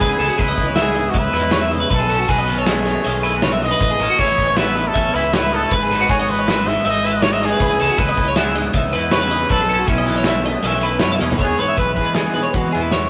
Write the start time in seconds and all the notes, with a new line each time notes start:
Already playing: G#4
0.00 C#2 C#3 E3 B3 D#4 E4 B4, kick, closed hi-hat
0.09 G#4
0.19 C#2 D#4 A4, closed hi-hat
0.28 F#4
0.38 C#2 E4 G#4, kick, closed hi-hat
0.42 B4
0.48 D#5
0.57 C#2 E3, kick, closed hi-hat
0.67 C#5
0.76 E5, snare, closed hi-hat
0.80 B3 G#4
0.95 G#2 D#5, closed hi-hat
1.10 F#4
1.14 C#2 D#4 E5, kick, closed hi-hat
1.19 B4
1.33 E2 E4 B4, snare, closed hi-hat
1.51 D#3 C#5, snare, closed hi-hat
1.61 E5
1.71 C#3 D#5, closed hi-hat
1.80 B4
1.90 B1 B2 A4 B4, kick, closed hi-hat
2.00 G#4
2.09 C#4 A4, closed hi-hat
2.19 F#4
2.28 B1 F#4 G#4 B4, kick, snare, closed hi-hat
2.39 D#5
2.47 D#3, closed hi-hat
2.58 A4 C#5
2.66 A3 G#4 D#5, snare, closed hi-hat
2.85 F#2 C#5, snare, closed hi-hat
3.04 B1 C#4 D#5, closed hi-hat
3.23 E4 B4, closed hi-hat
3.36 F#4
3.42 C#3 C#5, snare, closed hi-hat
3.52 E5
3.62 B2 D#5, closed hi-hat
3.71 B4
3.80 A1 A2 B4, kick, closed hi-hat
3.90 G#4
3.99 A1 C#4 A4, closed hi-hat
4.10 F#4
4.19 A1 E4 G#4 C#5, kick, closed hi-hat
4.28 D#5
4.38 A1 E3, kick, closed hi-hat
4.48 C#5
4.57 B3 B4 E5, snare, closed hi-hat
4.75 E2 D#5, closed hi-hat
4.88 A4
4.94 A1 C#4 E5, kick, closed hi-hat
5.14 C#2 E4 B4 E5, closed hi-hat
5.33 A2 B4 C#5, snare, closed hi-hat
5.42 E5
5.52 B3 A4 D#5, closed hi-hat
5.61 C#4 B4
5.71 G#1 G#2 B4, kick, closed hi-hat
5.82 G#4
5.90 D#4 A4, snare, closed hi-hat
6.01 F#4
6.09 G#1 F#4 G#4 C#5, kick, closed hi-hat
6.19 C#5 D#5
6.28 E3 B4, closed hi-hat
6.39 C#5
6.47 G#3 E5, snare, closed hi-hat
6.65 G#2 D#5 E5, snare, closed hi-hat
6.85 G#1 D#4 E5, closed hi-hat
6.89 D#5
7.03 E4 B4 E5, closed hi-hat
7.12 F#4
7.16 D#5
7.22 G#2 C#5, snare, closed hi-hat
7.32 D#5 E5
7.40 D#4 D#5, snare, closed hi-hat
7.45 G#4
7.52 B4
7.58 C#2 C#3 E3 B3 D#4 E4, kick, closed hi-hat
7.62 B4
7.71 G#4
7.79 C#2 D#4 A4, closed hi-hat
7.90 F#4
7.96 C#2 E4 G#4 B4, kick, snare, closed hi-hat
8.09 D#5
8.17 C#2 E3, kick, closed hi-hat
8.28 C#5
8.36 B3 G#4 E5, snare, closed hi-hat
8.55 G#2 D#5, snare, closed hi-hat
8.73 C#2 E5, kick, closed hi-hat
8.78 D#4
8.93 E2 E4 B4, closed hi-hat
9.12 C#3 B4 C#5, snare, closed hi-hat
9.21 E5
9.31 D#4 D#5, closed hi-hat
9.41 B4
9.49 B1 B2 A4 B4, kick, closed hi-hat
9.61 G#4
9.69 A4, closed hi-hat
9.73 C#4
9.79 F#4
9.87 B1 C#4 E4 G#4, kick, closed hi-hat
9.98 D#5
10.06 E3, snare, closed hi-hat
10.17 C#5
10.24 A3 E5, snare, closed hi-hat
10.44 F#2 D#5, closed hi-hat
10.63 B1 C#4 E5, snare, closed hi-hat
10.81 E4 B4, closed hi-hat
11.00 F#2 B2 C#5, snare, closed hi-hat
11.12 E5
11.19 E2 C#4 D#5, snare
11.31 B4, floor tom
11.38 E2 E3 G#3 B3 C#5, kick, closed hi-hat
11.43 G#4
11.57 G#2 G#4 B4 C#5, closed hi-hat
11.69 E5
11.77 B1 B4, kick, closed hi-hat
11.81 E3
11.94 E3 G#4 B4, kick, closed hi-hat
12.01 G#3
12.05 B4
12.15 G#4, snare, closed hi-hat
12.19 B3
12.34 B2 G#4 B4, closed hi-hat
12.43 C#5
12.53 E3 G#3 F#4 B4, kick, closed hi-hat
12.72 E2 B3 E4 G#4, closed hi-hat
12.81 B4
12.91 C#5, snare, closed hi-hat
12.96 E2